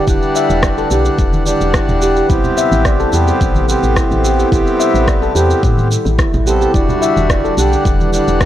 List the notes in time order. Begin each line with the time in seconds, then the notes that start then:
Already playing: D3 G3 E4 B4
0.06 E1 G3 D4 E4 F#5, kick, shaker
0.22 shaker
0.35 E5, shaker
0.50 E1, shaker
0.63 D5, kick, cross-stick, shaker
0.78 A4, shaker
0.90 B1 G3 D4 G4 F#5, shaker
1.05 high bongo, shaker
1.18 E1, kick, shaker
1.33 high conga, shaker
1.45 G3 D4 F#5, high bongo, shaker
1.61 E1, high bongo, shaker
1.74 E4, kick, cross-stick, shaker
1.88 E1, high bongo, low conga, shaker
2.02 G4, shaker
2.16 G4, shaker
2.28 A1 C3 B3 C4 E4, kick, shaker
2.32 G4
2.44 low conga, shaker
2.57 E5, shaker
2.72 A1, high conga, shaker
2.78 A4
2.85 D5, kick, cross-stick, shaker
3.00 A4, shaker
3.12 E2 B3 C4 G4, shaker
3.28 high bongo, shaker
3.41 A1, kick, shaker
3.54 high conga, shaker
3.67 B3 C4 G4, shaker
3.83 A1, shaker
3.96 E4, kick, cross-stick, shaker
4.11 A1, high conga, shaker
4.24 G4, shaker
4.39 G4, shaker
4.51 A1 B3 C4 E4, kick, shaker
4.55 G4
4.67 shaker
4.80 E5, shaker
4.94 A1, shaker
5.07 D5, kick, cross-stick, shaker
5.22 A4, shaker
5.34 E2 B3 C4 G4, shaker
5.50 high bongo, shaker
5.63 A2, kick, shaker
5.78 high conga, shaker
5.90 high bongo, shaker
6.05 A1, high bongo, high conga, shaker
6.19 E4, kick, cross-stick, shaker
6.34 A1, high bongo, low conga, shaker
6.45 B3 C4 G4 A4, shaker
6.61 G4, shaker
6.72 E1 D3 G3 D4 E4 F#4, kick, shaker
6.89 low conga, shaker
7.02 E5, shaker
7.17 E1, high conga, shaker
7.30 D5, kick, cross-stick, shaker
7.44 A4, shaker
7.56 B1 G3 D4 G4 B4 F#5, shaker
7.73 high bongo, shaker
7.85 E1, kick, shaker
8.00 high conga, shaker
8.11 G3 D4 F#5, shaker
8.28 E1, shaker
8.41 E4, kick, cross-stick, shaker